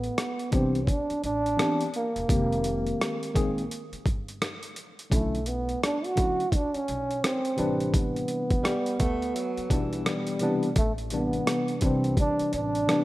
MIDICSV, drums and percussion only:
0, 0, Header, 1, 2, 480
1, 0, Start_track
1, 0, Tempo, 705882
1, 1559, Time_signature, 4, 2, 24, 8
1, 8868, End_track
2, 0, Start_track
2, 0, Title_t, "Drums"
2, 24, Note_on_c, 9, 42, 47
2, 92, Note_off_c, 9, 42, 0
2, 121, Note_on_c, 9, 42, 78
2, 122, Note_on_c, 9, 37, 93
2, 189, Note_off_c, 9, 42, 0
2, 190, Note_off_c, 9, 37, 0
2, 268, Note_on_c, 9, 42, 46
2, 336, Note_off_c, 9, 42, 0
2, 354, Note_on_c, 9, 42, 74
2, 359, Note_on_c, 9, 36, 88
2, 422, Note_off_c, 9, 42, 0
2, 427, Note_off_c, 9, 36, 0
2, 511, Note_on_c, 9, 42, 42
2, 579, Note_off_c, 9, 42, 0
2, 594, Note_on_c, 9, 36, 80
2, 601, Note_on_c, 9, 42, 79
2, 662, Note_off_c, 9, 36, 0
2, 669, Note_off_c, 9, 42, 0
2, 748, Note_on_c, 9, 42, 43
2, 816, Note_off_c, 9, 42, 0
2, 840, Note_on_c, 9, 42, 71
2, 908, Note_off_c, 9, 42, 0
2, 993, Note_on_c, 9, 42, 51
2, 1061, Note_off_c, 9, 42, 0
2, 1083, Note_on_c, 9, 37, 98
2, 1083, Note_on_c, 9, 42, 71
2, 1151, Note_off_c, 9, 37, 0
2, 1151, Note_off_c, 9, 42, 0
2, 1228, Note_on_c, 9, 42, 53
2, 1296, Note_off_c, 9, 42, 0
2, 1317, Note_on_c, 9, 42, 72
2, 1385, Note_off_c, 9, 42, 0
2, 1469, Note_on_c, 9, 42, 48
2, 1537, Note_off_c, 9, 42, 0
2, 1558, Note_on_c, 9, 36, 104
2, 1563, Note_on_c, 9, 42, 93
2, 1626, Note_off_c, 9, 36, 0
2, 1631, Note_off_c, 9, 42, 0
2, 1717, Note_on_c, 9, 42, 47
2, 1785, Note_off_c, 9, 42, 0
2, 1796, Note_on_c, 9, 42, 74
2, 1864, Note_off_c, 9, 42, 0
2, 1948, Note_on_c, 9, 42, 43
2, 2016, Note_off_c, 9, 42, 0
2, 2049, Note_on_c, 9, 42, 77
2, 2050, Note_on_c, 9, 37, 91
2, 2117, Note_off_c, 9, 42, 0
2, 2118, Note_off_c, 9, 37, 0
2, 2195, Note_on_c, 9, 42, 47
2, 2263, Note_off_c, 9, 42, 0
2, 2282, Note_on_c, 9, 36, 85
2, 2284, Note_on_c, 9, 42, 79
2, 2350, Note_off_c, 9, 36, 0
2, 2352, Note_off_c, 9, 42, 0
2, 2435, Note_on_c, 9, 42, 43
2, 2503, Note_off_c, 9, 42, 0
2, 2525, Note_on_c, 9, 42, 79
2, 2593, Note_off_c, 9, 42, 0
2, 2671, Note_on_c, 9, 42, 43
2, 2739, Note_off_c, 9, 42, 0
2, 2758, Note_on_c, 9, 36, 89
2, 2764, Note_on_c, 9, 42, 69
2, 2826, Note_off_c, 9, 36, 0
2, 2832, Note_off_c, 9, 42, 0
2, 2913, Note_on_c, 9, 42, 50
2, 2981, Note_off_c, 9, 42, 0
2, 3004, Note_on_c, 9, 37, 98
2, 3004, Note_on_c, 9, 42, 68
2, 3072, Note_off_c, 9, 37, 0
2, 3072, Note_off_c, 9, 42, 0
2, 3146, Note_on_c, 9, 42, 54
2, 3214, Note_off_c, 9, 42, 0
2, 3239, Note_on_c, 9, 42, 71
2, 3307, Note_off_c, 9, 42, 0
2, 3393, Note_on_c, 9, 42, 52
2, 3461, Note_off_c, 9, 42, 0
2, 3479, Note_on_c, 9, 36, 103
2, 3482, Note_on_c, 9, 42, 96
2, 3547, Note_off_c, 9, 36, 0
2, 3550, Note_off_c, 9, 42, 0
2, 3636, Note_on_c, 9, 42, 48
2, 3704, Note_off_c, 9, 42, 0
2, 3713, Note_on_c, 9, 42, 75
2, 3781, Note_off_c, 9, 42, 0
2, 3868, Note_on_c, 9, 42, 45
2, 3936, Note_off_c, 9, 42, 0
2, 3967, Note_on_c, 9, 42, 85
2, 3968, Note_on_c, 9, 37, 93
2, 4035, Note_off_c, 9, 42, 0
2, 4036, Note_off_c, 9, 37, 0
2, 4110, Note_on_c, 9, 42, 48
2, 4178, Note_off_c, 9, 42, 0
2, 4196, Note_on_c, 9, 42, 80
2, 4199, Note_on_c, 9, 36, 87
2, 4264, Note_off_c, 9, 42, 0
2, 4267, Note_off_c, 9, 36, 0
2, 4353, Note_on_c, 9, 42, 44
2, 4421, Note_off_c, 9, 42, 0
2, 4434, Note_on_c, 9, 36, 81
2, 4438, Note_on_c, 9, 42, 86
2, 4502, Note_off_c, 9, 36, 0
2, 4506, Note_off_c, 9, 42, 0
2, 4586, Note_on_c, 9, 42, 45
2, 4654, Note_off_c, 9, 42, 0
2, 4680, Note_on_c, 9, 42, 75
2, 4748, Note_off_c, 9, 42, 0
2, 4832, Note_on_c, 9, 42, 51
2, 4900, Note_off_c, 9, 42, 0
2, 4924, Note_on_c, 9, 37, 104
2, 4924, Note_on_c, 9, 42, 74
2, 4992, Note_off_c, 9, 37, 0
2, 4992, Note_off_c, 9, 42, 0
2, 5065, Note_on_c, 9, 42, 55
2, 5133, Note_off_c, 9, 42, 0
2, 5153, Note_on_c, 9, 42, 71
2, 5221, Note_off_c, 9, 42, 0
2, 5307, Note_on_c, 9, 42, 49
2, 5375, Note_off_c, 9, 42, 0
2, 5397, Note_on_c, 9, 36, 105
2, 5399, Note_on_c, 9, 42, 92
2, 5465, Note_off_c, 9, 36, 0
2, 5467, Note_off_c, 9, 42, 0
2, 5551, Note_on_c, 9, 42, 47
2, 5619, Note_off_c, 9, 42, 0
2, 5631, Note_on_c, 9, 42, 78
2, 5699, Note_off_c, 9, 42, 0
2, 5783, Note_on_c, 9, 42, 44
2, 5784, Note_on_c, 9, 36, 83
2, 5851, Note_off_c, 9, 42, 0
2, 5852, Note_off_c, 9, 36, 0
2, 5882, Note_on_c, 9, 37, 93
2, 5882, Note_on_c, 9, 42, 79
2, 5950, Note_off_c, 9, 37, 0
2, 5950, Note_off_c, 9, 42, 0
2, 6027, Note_on_c, 9, 42, 50
2, 6095, Note_off_c, 9, 42, 0
2, 6117, Note_on_c, 9, 42, 80
2, 6120, Note_on_c, 9, 36, 86
2, 6185, Note_off_c, 9, 42, 0
2, 6188, Note_off_c, 9, 36, 0
2, 6272, Note_on_c, 9, 42, 40
2, 6340, Note_off_c, 9, 42, 0
2, 6364, Note_on_c, 9, 42, 89
2, 6432, Note_off_c, 9, 42, 0
2, 6511, Note_on_c, 9, 42, 46
2, 6579, Note_off_c, 9, 42, 0
2, 6598, Note_on_c, 9, 36, 86
2, 6601, Note_on_c, 9, 42, 73
2, 6666, Note_off_c, 9, 36, 0
2, 6669, Note_off_c, 9, 42, 0
2, 6750, Note_on_c, 9, 42, 50
2, 6818, Note_off_c, 9, 42, 0
2, 6841, Note_on_c, 9, 42, 69
2, 6842, Note_on_c, 9, 37, 98
2, 6909, Note_off_c, 9, 42, 0
2, 6910, Note_off_c, 9, 37, 0
2, 6981, Note_on_c, 9, 42, 53
2, 7049, Note_off_c, 9, 42, 0
2, 7068, Note_on_c, 9, 42, 72
2, 7136, Note_off_c, 9, 42, 0
2, 7227, Note_on_c, 9, 42, 50
2, 7295, Note_off_c, 9, 42, 0
2, 7315, Note_on_c, 9, 42, 92
2, 7317, Note_on_c, 9, 36, 102
2, 7383, Note_off_c, 9, 42, 0
2, 7385, Note_off_c, 9, 36, 0
2, 7467, Note_on_c, 9, 42, 46
2, 7535, Note_off_c, 9, 42, 0
2, 7550, Note_on_c, 9, 42, 74
2, 7618, Note_off_c, 9, 42, 0
2, 7705, Note_on_c, 9, 42, 46
2, 7773, Note_off_c, 9, 42, 0
2, 7801, Note_on_c, 9, 42, 83
2, 7802, Note_on_c, 9, 37, 96
2, 7869, Note_off_c, 9, 42, 0
2, 7870, Note_off_c, 9, 37, 0
2, 7944, Note_on_c, 9, 42, 49
2, 8012, Note_off_c, 9, 42, 0
2, 8030, Note_on_c, 9, 42, 81
2, 8038, Note_on_c, 9, 36, 83
2, 8098, Note_off_c, 9, 42, 0
2, 8106, Note_off_c, 9, 36, 0
2, 8188, Note_on_c, 9, 42, 43
2, 8256, Note_off_c, 9, 42, 0
2, 8275, Note_on_c, 9, 36, 83
2, 8278, Note_on_c, 9, 42, 82
2, 8343, Note_off_c, 9, 36, 0
2, 8346, Note_off_c, 9, 42, 0
2, 8428, Note_on_c, 9, 42, 45
2, 8496, Note_off_c, 9, 42, 0
2, 8519, Note_on_c, 9, 42, 72
2, 8587, Note_off_c, 9, 42, 0
2, 8670, Note_on_c, 9, 42, 50
2, 8738, Note_off_c, 9, 42, 0
2, 8764, Note_on_c, 9, 37, 99
2, 8764, Note_on_c, 9, 42, 72
2, 8832, Note_off_c, 9, 37, 0
2, 8832, Note_off_c, 9, 42, 0
2, 8868, End_track
0, 0, End_of_file